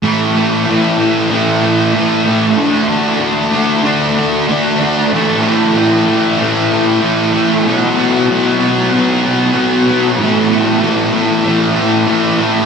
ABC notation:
X:1
M:4/4
L:1/8
Q:1/4=95
K:Dlyd
V:1 name="Distorted electric guitar" clef=bass
[A,,E,A,] [E,A,] [A,,E,A,] [E,A,] [A,,E,A,] [E,A,] [A,,E,A,] [E,A,] | [D,A,D] [A,D] [D,A,D] [A,D] [D,A,D] [A,D] [D,A,D] [A,D] | [A,,E,A,] [E,A,] [A,,E,A,] [E,A,] [A,,E,A,] [E,A,] [A,,E,A,] [E,A,] | [B,,F,B,] [F,B,] [B,,F,B,] [F,B,] [B,,F,B,] [F,B,] [B,,F,B,] [F,B,] |
[A,,E,A,] [E,A,] [A,,E,A,] [E,A,] [A,,E,A,] [E,A,] [A,,E,A,] [E,A,] |]